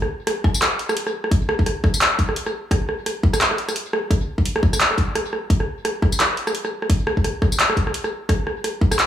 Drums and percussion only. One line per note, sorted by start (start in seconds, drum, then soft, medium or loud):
0.02 cross-stick medium
0.27 cross-stick medium
0.27 closed hi-hat medium
0.44 kick loud
0.44 cross-stick medium
0.54 tambourine medium
0.62 cross-stick medium
0.62 clap loud
0.62 closed hi-hat medium
0.79 closed hi-hat soft
0.89 cross-stick medium
0.89 tambourine soft
0.97 closed hi-hat medium
1.07 cross-stick medium
1.24 cross-stick medium
1.31 kick loud
1.31 closed hi-hat medium
1.49 cross-stick medium
1.59 kick medium
1.66 cross-stick medium
1.66 closed hi-hat medium
1.84 kick loud
1.84 cross-stick medium
1.94 tambourine medium
2.01 clap loud
2.01 closed hi-hat medium
2.19 kick medium
2.19 closed hi-hat soft
2.29 cross-stick medium
2.36 closed hi-hat medium
2.46 cross-stick medium
2.71 kick loud
2.71 cross-stick medium
2.71 closed hi-hat medium
2.89 cross-stick medium
3.06 cross-stick medium
3.06 closed hi-hat medium
3.23 kick loud
3.33 cross-stick medium
3.33 tambourine medium
3.41 clap loud
3.41 closed hi-hat medium
3.51 cross-stick medium
3.58 closed hi-hat soft
3.69 cross-stick medium
3.69 tambourine soft
3.76 closed hi-hat medium
3.93 cross-stick medium
4.11 kick loud
4.11 cross-stick soft
4.11 closed hi-hat medium
4.38 kick medium
4.46 closed hi-hat medium
4.56 cross-stick medium
4.63 kick loud
4.73 cross-stick medium
4.73 tambourine medium
4.81 clap loud
4.81 closed hi-hat medium
4.91 cross-stick soft
4.98 kick medium
4.98 closed hi-hat soft
5.15 cross-stick medium
5.15 closed hi-hat medium
5.33 cross-stick medium
5.50 kick loud
5.50 closed hi-hat medium
5.60 cross-stick medium
5.85 cross-stick medium
5.85 closed hi-hat medium
6.02 kick loud
6.02 cross-stick medium
6.12 tambourine medium
6.20 cross-stick medium
6.20 clap loud
6.20 closed hi-hat medium
6.37 closed hi-hat soft
6.47 cross-stick medium
6.47 tambourine soft
6.55 closed hi-hat medium
6.65 cross-stick medium
6.82 cross-stick medium
6.90 kick loud
6.90 closed hi-hat medium
7.07 cross-stick medium
7.17 kick medium
7.24 cross-stick soft
7.24 closed hi-hat medium
7.42 kick loud
7.42 cross-stick medium
7.52 tambourine medium
7.60 clap loud
7.60 closed hi-hat medium
7.70 cross-stick medium
7.77 kick medium
7.77 closed hi-hat soft
7.87 cross-stick medium
7.94 closed hi-hat medium
8.04 cross-stick medium
8.29 kick loud
8.29 cross-stick medium
8.29 closed hi-hat medium
8.47 cross-stick medium
8.64 cross-stick medium
8.64 closed hi-hat medium
8.81 kick loud
8.92 cross-stick medium
8.92 tambourine medium
8.99 clap loud
8.99 closed hi-hat medium